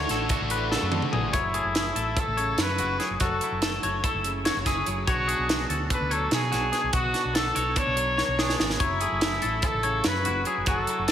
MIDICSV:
0, 0, Header, 1, 7, 480
1, 0, Start_track
1, 0, Tempo, 414651
1, 1555, Time_signature, 9, 3, 24, 8
1, 12870, End_track
2, 0, Start_track
2, 0, Title_t, "Clean electric guitar"
2, 0, Program_c, 0, 27
2, 0, Note_on_c, 0, 73, 80
2, 117, Note_off_c, 0, 73, 0
2, 125, Note_on_c, 0, 69, 70
2, 591, Note_on_c, 0, 71, 63
2, 600, Note_off_c, 0, 69, 0
2, 826, Note_on_c, 0, 69, 75
2, 833, Note_off_c, 0, 71, 0
2, 1297, Note_off_c, 0, 69, 0
2, 1302, Note_on_c, 0, 68, 61
2, 1541, Note_on_c, 0, 73, 75
2, 1548, Note_off_c, 0, 68, 0
2, 1783, Note_on_c, 0, 68, 71
2, 1788, Note_off_c, 0, 73, 0
2, 2260, Note_off_c, 0, 68, 0
2, 2264, Note_on_c, 0, 69, 64
2, 2746, Note_on_c, 0, 73, 65
2, 2750, Note_off_c, 0, 69, 0
2, 3231, Note_off_c, 0, 73, 0
2, 3232, Note_on_c, 0, 66, 65
2, 3463, Note_off_c, 0, 66, 0
2, 3467, Note_on_c, 0, 68, 64
2, 3707, Note_off_c, 0, 68, 0
2, 3712, Note_on_c, 0, 66, 76
2, 4191, Note_off_c, 0, 66, 0
2, 4195, Note_on_c, 0, 69, 76
2, 4436, Note_off_c, 0, 69, 0
2, 4437, Note_on_c, 0, 73, 61
2, 4676, Note_off_c, 0, 73, 0
2, 4678, Note_on_c, 0, 69, 78
2, 5154, Note_on_c, 0, 73, 74
2, 5157, Note_off_c, 0, 69, 0
2, 5395, Note_off_c, 0, 73, 0
2, 5399, Note_on_c, 0, 68, 72
2, 5874, Note_on_c, 0, 73, 88
2, 5878, Note_off_c, 0, 68, 0
2, 6107, Note_on_c, 0, 68, 69
2, 6115, Note_off_c, 0, 73, 0
2, 6588, Note_off_c, 0, 68, 0
2, 6593, Note_on_c, 0, 69, 59
2, 7070, Note_on_c, 0, 73, 59
2, 7074, Note_off_c, 0, 69, 0
2, 7543, Note_on_c, 0, 66, 66
2, 7553, Note_off_c, 0, 73, 0
2, 7777, Note_off_c, 0, 66, 0
2, 7782, Note_on_c, 0, 68, 65
2, 8020, Note_off_c, 0, 68, 0
2, 8024, Note_on_c, 0, 66, 81
2, 8507, Note_on_c, 0, 69, 76
2, 8510, Note_off_c, 0, 66, 0
2, 8742, Note_off_c, 0, 69, 0
2, 8742, Note_on_c, 0, 73, 62
2, 8983, Note_off_c, 0, 73, 0
2, 8983, Note_on_c, 0, 69, 81
2, 9457, Note_off_c, 0, 69, 0
2, 9461, Note_on_c, 0, 73, 72
2, 9708, Note_off_c, 0, 73, 0
2, 9710, Note_on_c, 0, 68, 69
2, 10186, Note_on_c, 0, 73, 83
2, 10192, Note_off_c, 0, 68, 0
2, 10430, Note_off_c, 0, 73, 0
2, 10432, Note_on_c, 0, 68, 72
2, 10908, Note_on_c, 0, 69, 66
2, 10913, Note_off_c, 0, 68, 0
2, 11379, Note_off_c, 0, 69, 0
2, 11384, Note_on_c, 0, 73, 67
2, 11869, Note_off_c, 0, 73, 0
2, 11872, Note_on_c, 0, 66, 67
2, 12112, Note_off_c, 0, 66, 0
2, 12118, Note_on_c, 0, 68, 71
2, 12355, Note_off_c, 0, 68, 0
2, 12360, Note_on_c, 0, 66, 83
2, 12829, Note_on_c, 0, 69, 75
2, 12836, Note_off_c, 0, 66, 0
2, 12870, Note_off_c, 0, 69, 0
2, 12870, End_track
3, 0, Start_track
3, 0, Title_t, "Trumpet"
3, 0, Program_c, 1, 56
3, 1552, Note_on_c, 1, 64, 78
3, 2542, Note_on_c, 1, 69, 84
3, 2559, Note_off_c, 1, 64, 0
3, 3025, Note_on_c, 1, 71, 91
3, 3043, Note_off_c, 1, 69, 0
3, 3491, Note_off_c, 1, 71, 0
3, 3725, Note_on_c, 1, 69, 84
3, 4223, Note_off_c, 1, 69, 0
3, 5889, Note_on_c, 1, 66, 92
3, 6556, Note_off_c, 1, 66, 0
3, 6859, Note_on_c, 1, 71, 82
3, 7085, Note_on_c, 1, 69, 88
3, 7103, Note_off_c, 1, 71, 0
3, 7321, Note_off_c, 1, 69, 0
3, 7335, Note_on_c, 1, 68, 86
3, 7999, Note_off_c, 1, 68, 0
3, 8047, Note_on_c, 1, 66, 91
3, 8488, Note_off_c, 1, 66, 0
3, 8517, Note_on_c, 1, 69, 92
3, 9001, Note_on_c, 1, 73, 98
3, 9019, Note_off_c, 1, 69, 0
3, 9958, Note_off_c, 1, 73, 0
3, 10213, Note_on_c, 1, 64, 86
3, 11176, Note_on_c, 1, 69, 86
3, 11193, Note_off_c, 1, 64, 0
3, 11651, Note_on_c, 1, 71, 79
3, 11668, Note_off_c, 1, 69, 0
3, 12122, Note_off_c, 1, 71, 0
3, 12372, Note_on_c, 1, 69, 79
3, 12865, Note_off_c, 1, 69, 0
3, 12870, End_track
4, 0, Start_track
4, 0, Title_t, "Overdriven electric guitar"
4, 0, Program_c, 2, 29
4, 0, Note_on_c, 2, 50, 84
4, 0, Note_on_c, 2, 57, 90
4, 0, Note_on_c, 2, 62, 86
4, 0, Note_on_c, 2, 66, 96
4, 326, Note_off_c, 2, 66, 0
4, 335, Note_off_c, 2, 50, 0
4, 338, Note_off_c, 2, 62, 0
4, 340, Note_on_c, 2, 66, 80
4, 341, Note_off_c, 2, 57, 0
4, 352, Note_on_c, 2, 62, 77
4, 359, Note_on_c, 2, 57, 75
4, 366, Note_on_c, 2, 50, 61
4, 1533, Note_off_c, 2, 66, 0
4, 1539, Note_off_c, 2, 62, 0
4, 1543, Note_off_c, 2, 57, 0
4, 1546, Note_off_c, 2, 50, 0
4, 12870, End_track
5, 0, Start_track
5, 0, Title_t, "Clean electric guitar"
5, 0, Program_c, 3, 27
5, 0, Note_on_c, 3, 50, 74
5, 0, Note_on_c, 3, 57, 57
5, 0, Note_on_c, 3, 66, 50
5, 0, Note_on_c, 3, 73, 63
5, 346, Note_off_c, 3, 66, 0
5, 360, Note_on_c, 3, 66, 54
5, 593, Note_on_c, 3, 45, 55
5, 829, Note_off_c, 3, 45, 0
5, 834, Note_on_c, 3, 49, 56
5, 1051, Note_off_c, 3, 50, 0
5, 1065, Note_on_c, 3, 50, 54
5, 1074, Note_off_c, 3, 49, 0
5, 1306, Note_off_c, 3, 50, 0
5, 1311, Note_on_c, 3, 52, 59
5, 1525, Note_off_c, 3, 57, 0
5, 1525, Note_off_c, 3, 73, 0
5, 1529, Note_off_c, 3, 66, 0
5, 1548, Note_off_c, 3, 52, 0
5, 1553, Note_on_c, 3, 54, 58
5, 1787, Note_on_c, 3, 57, 46
5, 2024, Note_off_c, 3, 57, 0
5, 2028, Note_on_c, 3, 57, 48
5, 2271, Note_off_c, 3, 57, 0
5, 2276, Note_on_c, 3, 57, 53
5, 2520, Note_on_c, 3, 64, 47
5, 2759, Note_on_c, 3, 49, 51
5, 2984, Note_off_c, 3, 64, 0
5, 2998, Note_on_c, 3, 64, 53
5, 3117, Note_off_c, 3, 64, 0
5, 3117, Note_on_c, 3, 66, 50
5, 3243, Note_on_c, 3, 64, 46
5, 3476, Note_off_c, 3, 54, 0
5, 3477, Note_off_c, 3, 49, 0
5, 3481, Note_on_c, 3, 54, 66
5, 3690, Note_off_c, 3, 64, 0
5, 3705, Note_off_c, 3, 54, 0
5, 3710, Note_on_c, 3, 54, 65
5, 3717, Note_off_c, 3, 66, 0
5, 3978, Note_on_c, 3, 64, 48
5, 4193, Note_off_c, 3, 57, 0
5, 4198, Note_on_c, 3, 57, 62
5, 4452, Note_on_c, 3, 66, 50
5, 4670, Note_off_c, 3, 64, 0
5, 4684, Note_on_c, 3, 64, 50
5, 4920, Note_on_c, 3, 49, 50
5, 5162, Note_off_c, 3, 66, 0
5, 5166, Note_on_c, 3, 66, 50
5, 5391, Note_off_c, 3, 64, 0
5, 5405, Note_on_c, 3, 64, 54
5, 5633, Note_off_c, 3, 54, 0
5, 5638, Note_off_c, 3, 49, 0
5, 5638, Note_on_c, 3, 54, 63
5, 5852, Note_off_c, 3, 64, 0
5, 5873, Note_on_c, 3, 47, 67
5, 5879, Note_off_c, 3, 57, 0
5, 5884, Note_on_c, 3, 59, 54
5, 5891, Note_on_c, 3, 62, 47
5, 6110, Note_off_c, 3, 62, 0
5, 6115, Note_on_c, 3, 62, 45
5, 6348, Note_off_c, 3, 59, 0
5, 6353, Note_on_c, 3, 59, 59
5, 6601, Note_off_c, 3, 66, 0
5, 6605, Note_on_c, 3, 66, 59
5, 6847, Note_off_c, 3, 62, 0
5, 6851, Note_on_c, 3, 62, 46
5, 7058, Note_off_c, 3, 54, 0
5, 7062, Note_on_c, 3, 54, 56
5, 7310, Note_off_c, 3, 66, 0
5, 7314, Note_on_c, 3, 66, 52
5, 7532, Note_off_c, 3, 62, 0
5, 7546, Note_on_c, 3, 62, 51
5, 7767, Note_off_c, 3, 47, 0
5, 7781, Note_on_c, 3, 47, 70
5, 7999, Note_off_c, 3, 47, 0
5, 8002, Note_off_c, 3, 62, 0
5, 8005, Note_off_c, 3, 59, 0
5, 8020, Note_on_c, 3, 47, 60
5, 8258, Note_on_c, 3, 62, 45
5, 8492, Note_on_c, 3, 59, 56
5, 8743, Note_off_c, 3, 66, 0
5, 8747, Note_on_c, 3, 66, 53
5, 8970, Note_off_c, 3, 62, 0
5, 8984, Note_on_c, 3, 62, 49
5, 9210, Note_off_c, 3, 54, 0
5, 9215, Note_on_c, 3, 54, 59
5, 9465, Note_off_c, 3, 66, 0
5, 9469, Note_on_c, 3, 66, 51
5, 9710, Note_off_c, 3, 62, 0
5, 9725, Note_on_c, 3, 62, 52
5, 9942, Note_off_c, 3, 47, 0
5, 9956, Note_on_c, 3, 47, 67
5, 10154, Note_off_c, 3, 59, 0
5, 10167, Note_off_c, 3, 47, 0
5, 10171, Note_off_c, 3, 62, 0
5, 10195, Note_off_c, 3, 54, 0
5, 10199, Note_on_c, 3, 54, 61
5, 10439, Note_on_c, 3, 57, 46
5, 10659, Note_off_c, 3, 57, 0
5, 10664, Note_on_c, 3, 57, 52
5, 10913, Note_off_c, 3, 57, 0
5, 10918, Note_on_c, 3, 57, 53
5, 11153, Note_on_c, 3, 64, 50
5, 11188, Note_off_c, 3, 66, 0
5, 11395, Note_on_c, 3, 49, 59
5, 11636, Note_on_c, 3, 66, 60
5, 11873, Note_off_c, 3, 64, 0
5, 11892, Note_on_c, 3, 64, 54
5, 12109, Note_off_c, 3, 54, 0
5, 12113, Note_on_c, 3, 54, 73
5, 12114, Note_off_c, 3, 49, 0
5, 12333, Note_off_c, 3, 64, 0
5, 12347, Note_off_c, 3, 54, 0
5, 12351, Note_on_c, 3, 54, 75
5, 12606, Note_on_c, 3, 64, 48
5, 12640, Note_off_c, 3, 66, 0
5, 12820, Note_off_c, 3, 57, 0
5, 12825, Note_on_c, 3, 57, 58
5, 12870, Note_off_c, 3, 54, 0
5, 12870, Note_off_c, 3, 57, 0
5, 12870, Note_off_c, 3, 64, 0
5, 12870, End_track
6, 0, Start_track
6, 0, Title_t, "Fingered electric bass"
6, 0, Program_c, 4, 33
6, 114, Note_on_c, 4, 33, 81
6, 411, Note_off_c, 4, 33, 0
6, 469, Note_on_c, 4, 33, 77
6, 867, Note_off_c, 4, 33, 0
6, 952, Note_on_c, 4, 42, 76
6, 1151, Note_off_c, 4, 42, 0
6, 1311, Note_on_c, 4, 33, 87
6, 1511, Note_off_c, 4, 33, 0
6, 1548, Note_on_c, 4, 30, 74
6, 1848, Note_off_c, 4, 30, 0
6, 1904, Note_on_c, 4, 30, 70
6, 2205, Note_off_c, 4, 30, 0
6, 2265, Note_on_c, 4, 33, 75
6, 2467, Note_off_c, 4, 33, 0
6, 2630, Note_on_c, 4, 33, 75
6, 2929, Note_off_c, 4, 33, 0
6, 2982, Note_on_c, 4, 42, 80
6, 3235, Note_on_c, 4, 30, 88
6, 3253, Note_off_c, 4, 42, 0
6, 3433, Note_off_c, 4, 30, 0
6, 3592, Note_on_c, 4, 30, 58
6, 3693, Note_off_c, 4, 30, 0
6, 3709, Note_on_c, 4, 30, 67
6, 3910, Note_off_c, 4, 30, 0
6, 4072, Note_on_c, 4, 30, 68
6, 4371, Note_off_c, 4, 30, 0
6, 4437, Note_on_c, 4, 30, 77
6, 4635, Note_off_c, 4, 30, 0
6, 4792, Note_on_c, 4, 30, 70
6, 5190, Note_off_c, 4, 30, 0
6, 5282, Note_on_c, 4, 30, 76
6, 5577, Note_off_c, 4, 30, 0
6, 5640, Note_on_c, 4, 30, 78
6, 5836, Note_off_c, 4, 30, 0
6, 5876, Note_on_c, 4, 35, 73
6, 6173, Note_off_c, 4, 35, 0
6, 6237, Note_on_c, 4, 35, 78
6, 6533, Note_off_c, 4, 35, 0
6, 6592, Note_on_c, 4, 38, 80
6, 6792, Note_off_c, 4, 38, 0
6, 6951, Note_on_c, 4, 38, 73
6, 7250, Note_off_c, 4, 38, 0
6, 7313, Note_on_c, 4, 47, 83
6, 7552, Note_on_c, 4, 35, 85
6, 7570, Note_off_c, 4, 47, 0
6, 7752, Note_off_c, 4, 35, 0
6, 7911, Note_on_c, 4, 35, 74
6, 8012, Note_off_c, 4, 35, 0
6, 8025, Note_on_c, 4, 35, 81
6, 8227, Note_off_c, 4, 35, 0
6, 8392, Note_on_c, 4, 35, 61
6, 8690, Note_off_c, 4, 35, 0
6, 8753, Note_on_c, 4, 35, 85
6, 8952, Note_off_c, 4, 35, 0
6, 9108, Note_on_c, 4, 35, 75
6, 9507, Note_off_c, 4, 35, 0
6, 9586, Note_on_c, 4, 35, 73
6, 9886, Note_off_c, 4, 35, 0
6, 9954, Note_on_c, 4, 32, 83
6, 10152, Note_off_c, 4, 32, 0
6, 10190, Note_on_c, 4, 30, 73
6, 10489, Note_off_c, 4, 30, 0
6, 10556, Note_on_c, 4, 30, 84
6, 10852, Note_off_c, 4, 30, 0
6, 10923, Note_on_c, 4, 33, 78
6, 11118, Note_off_c, 4, 33, 0
6, 11279, Note_on_c, 4, 33, 77
6, 11573, Note_off_c, 4, 33, 0
6, 11639, Note_on_c, 4, 42, 90
6, 11883, Note_on_c, 4, 30, 87
6, 11900, Note_off_c, 4, 42, 0
6, 12077, Note_off_c, 4, 30, 0
6, 12242, Note_on_c, 4, 30, 68
6, 12337, Note_off_c, 4, 30, 0
6, 12348, Note_on_c, 4, 30, 81
6, 12548, Note_off_c, 4, 30, 0
6, 12720, Note_on_c, 4, 30, 69
6, 12870, Note_off_c, 4, 30, 0
6, 12870, End_track
7, 0, Start_track
7, 0, Title_t, "Drums"
7, 107, Note_on_c, 9, 42, 57
7, 114, Note_on_c, 9, 38, 34
7, 223, Note_off_c, 9, 42, 0
7, 230, Note_off_c, 9, 38, 0
7, 340, Note_on_c, 9, 42, 75
7, 346, Note_on_c, 9, 36, 97
7, 456, Note_off_c, 9, 42, 0
7, 462, Note_off_c, 9, 36, 0
7, 580, Note_on_c, 9, 42, 60
7, 696, Note_off_c, 9, 42, 0
7, 830, Note_on_c, 9, 38, 49
7, 946, Note_off_c, 9, 38, 0
7, 1061, Note_on_c, 9, 48, 67
7, 1177, Note_off_c, 9, 48, 0
7, 1185, Note_on_c, 9, 47, 52
7, 1300, Note_off_c, 9, 47, 0
7, 1307, Note_on_c, 9, 45, 76
7, 1422, Note_off_c, 9, 45, 0
7, 1545, Note_on_c, 9, 42, 65
7, 1546, Note_on_c, 9, 36, 86
7, 1660, Note_off_c, 9, 42, 0
7, 1662, Note_off_c, 9, 36, 0
7, 1784, Note_on_c, 9, 42, 46
7, 1899, Note_off_c, 9, 42, 0
7, 2026, Note_on_c, 9, 42, 67
7, 2033, Note_on_c, 9, 38, 80
7, 2142, Note_off_c, 9, 42, 0
7, 2149, Note_off_c, 9, 38, 0
7, 2270, Note_on_c, 9, 42, 56
7, 2386, Note_off_c, 9, 42, 0
7, 2507, Note_on_c, 9, 36, 84
7, 2507, Note_on_c, 9, 42, 65
7, 2623, Note_off_c, 9, 36, 0
7, 2623, Note_off_c, 9, 42, 0
7, 2750, Note_on_c, 9, 42, 45
7, 2866, Note_off_c, 9, 42, 0
7, 2984, Note_on_c, 9, 42, 68
7, 2991, Note_on_c, 9, 38, 88
7, 3100, Note_off_c, 9, 42, 0
7, 3107, Note_off_c, 9, 38, 0
7, 3222, Note_on_c, 9, 42, 55
7, 3338, Note_off_c, 9, 42, 0
7, 3470, Note_on_c, 9, 42, 45
7, 3477, Note_on_c, 9, 38, 27
7, 3586, Note_off_c, 9, 42, 0
7, 3593, Note_off_c, 9, 38, 0
7, 3704, Note_on_c, 9, 42, 69
7, 3710, Note_on_c, 9, 36, 93
7, 3820, Note_off_c, 9, 42, 0
7, 3826, Note_off_c, 9, 36, 0
7, 3948, Note_on_c, 9, 42, 50
7, 4064, Note_off_c, 9, 42, 0
7, 4189, Note_on_c, 9, 42, 68
7, 4196, Note_on_c, 9, 38, 84
7, 4305, Note_off_c, 9, 42, 0
7, 4312, Note_off_c, 9, 38, 0
7, 4435, Note_on_c, 9, 42, 60
7, 4551, Note_off_c, 9, 42, 0
7, 4674, Note_on_c, 9, 36, 84
7, 4674, Note_on_c, 9, 42, 72
7, 4790, Note_off_c, 9, 36, 0
7, 4790, Note_off_c, 9, 42, 0
7, 4914, Note_on_c, 9, 42, 56
7, 5029, Note_off_c, 9, 42, 0
7, 5155, Note_on_c, 9, 42, 67
7, 5162, Note_on_c, 9, 38, 89
7, 5271, Note_off_c, 9, 42, 0
7, 5278, Note_off_c, 9, 38, 0
7, 5393, Note_on_c, 9, 42, 59
7, 5395, Note_on_c, 9, 36, 71
7, 5400, Note_on_c, 9, 38, 31
7, 5509, Note_off_c, 9, 42, 0
7, 5510, Note_off_c, 9, 36, 0
7, 5516, Note_off_c, 9, 38, 0
7, 5631, Note_on_c, 9, 42, 52
7, 5746, Note_off_c, 9, 42, 0
7, 5874, Note_on_c, 9, 42, 60
7, 5875, Note_on_c, 9, 36, 90
7, 5990, Note_off_c, 9, 42, 0
7, 5991, Note_off_c, 9, 36, 0
7, 6121, Note_on_c, 9, 42, 51
7, 6236, Note_off_c, 9, 42, 0
7, 6359, Note_on_c, 9, 42, 62
7, 6366, Note_on_c, 9, 38, 99
7, 6475, Note_off_c, 9, 42, 0
7, 6482, Note_off_c, 9, 38, 0
7, 6598, Note_on_c, 9, 42, 54
7, 6714, Note_off_c, 9, 42, 0
7, 6834, Note_on_c, 9, 36, 95
7, 6835, Note_on_c, 9, 42, 68
7, 6950, Note_off_c, 9, 36, 0
7, 6951, Note_off_c, 9, 42, 0
7, 7076, Note_on_c, 9, 42, 52
7, 7192, Note_off_c, 9, 42, 0
7, 7308, Note_on_c, 9, 42, 65
7, 7315, Note_on_c, 9, 38, 85
7, 7424, Note_off_c, 9, 42, 0
7, 7431, Note_off_c, 9, 38, 0
7, 7553, Note_on_c, 9, 42, 49
7, 7560, Note_on_c, 9, 38, 34
7, 7669, Note_off_c, 9, 42, 0
7, 7676, Note_off_c, 9, 38, 0
7, 7788, Note_on_c, 9, 42, 49
7, 7795, Note_on_c, 9, 38, 26
7, 7904, Note_off_c, 9, 42, 0
7, 7911, Note_off_c, 9, 38, 0
7, 8021, Note_on_c, 9, 42, 73
7, 8025, Note_on_c, 9, 36, 99
7, 8137, Note_off_c, 9, 42, 0
7, 8141, Note_off_c, 9, 36, 0
7, 8266, Note_on_c, 9, 42, 46
7, 8273, Note_on_c, 9, 38, 27
7, 8382, Note_off_c, 9, 42, 0
7, 8389, Note_off_c, 9, 38, 0
7, 8509, Note_on_c, 9, 42, 64
7, 8516, Note_on_c, 9, 38, 100
7, 8625, Note_off_c, 9, 42, 0
7, 8632, Note_off_c, 9, 38, 0
7, 8750, Note_on_c, 9, 42, 64
7, 8866, Note_off_c, 9, 42, 0
7, 8983, Note_on_c, 9, 42, 73
7, 8986, Note_on_c, 9, 36, 81
7, 9099, Note_off_c, 9, 42, 0
7, 9102, Note_off_c, 9, 36, 0
7, 9224, Note_on_c, 9, 42, 61
7, 9340, Note_off_c, 9, 42, 0
7, 9470, Note_on_c, 9, 38, 42
7, 9586, Note_off_c, 9, 38, 0
7, 9709, Note_on_c, 9, 38, 68
7, 9825, Note_off_c, 9, 38, 0
7, 9835, Note_on_c, 9, 38, 56
7, 9951, Note_off_c, 9, 38, 0
7, 9954, Note_on_c, 9, 38, 77
7, 10070, Note_off_c, 9, 38, 0
7, 10071, Note_on_c, 9, 38, 58
7, 10187, Note_off_c, 9, 38, 0
7, 10188, Note_on_c, 9, 36, 89
7, 10192, Note_on_c, 9, 42, 62
7, 10304, Note_off_c, 9, 36, 0
7, 10307, Note_off_c, 9, 42, 0
7, 10425, Note_on_c, 9, 42, 50
7, 10541, Note_off_c, 9, 42, 0
7, 10666, Note_on_c, 9, 42, 70
7, 10673, Note_on_c, 9, 38, 101
7, 10782, Note_off_c, 9, 42, 0
7, 10789, Note_off_c, 9, 38, 0
7, 10903, Note_on_c, 9, 42, 55
7, 11018, Note_off_c, 9, 42, 0
7, 11139, Note_on_c, 9, 42, 70
7, 11146, Note_on_c, 9, 36, 89
7, 11254, Note_off_c, 9, 42, 0
7, 11261, Note_off_c, 9, 36, 0
7, 11382, Note_on_c, 9, 42, 47
7, 11498, Note_off_c, 9, 42, 0
7, 11620, Note_on_c, 9, 42, 72
7, 11627, Note_on_c, 9, 38, 97
7, 11736, Note_off_c, 9, 42, 0
7, 11743, Note_off_c, 9, 38, 0
7, 11866, Note_on_c, 9, 42, 57
7, 11981, Note_off_c, 9, 42, 0
7, 12100, Note_on_c, 9, 42, 50
7, 12216, Note_off_c, 9, 42, 0
7, 12342, Note_on_c, 9, 42, 69
7, 12350, Note_on_c, 9, 36, 95
7, 12458, Note_off_c, 9, 42, 0
7, 12466, Note_off_c, 9, 36, 0
7, 12587, Note_on_c, 9, 42, 49
7, 12702, Note_off_c, 9, 42, 0
7, 12825, Note_on_c, 9, 42, 76
7, 12832, Note_on_c, 9, 38, 84
7, 12870, Note_off_c, 9, 38, 0
7, 12870, Note_off_c, 9, 42, 0
7, 12870, End_track
0, 0, End_of_file